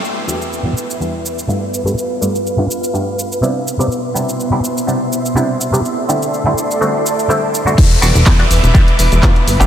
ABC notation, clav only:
X:1
M:4/4
L:1/16
Q:"Swing 16ths" 1/4=124
K:Em
V:1 name="Clav"
z2 [E,,G,B,DF]3 [E,,G,B,DF] z2 [E,,G,B,DG]4 [G,,A,B,D=F]3 [G,,A,B,DG] | z2 [G,,A,B,D=F]3 [G,,A,B,DF] z2 [G,,A,B,DG]4 [C,G,B,DE]3 [C,G,B,DG] | z2 [C,G,B,DE]3 [C,G,B,DE] z2 [C,G,B,DG]4 [C,G,B,DE]3 [C,G,B,DG] | z2 [D,G,A,CE]3 [D,G,A,CE] z2 [D,G,A,CF]4 [D,G,A,CE]3 [D,G,A,CF] |
z2 [G,B,DF]3 [G,B,DF] z2 [G,B,DG]4 [A,B,D=F]3 [A,B,DG] |]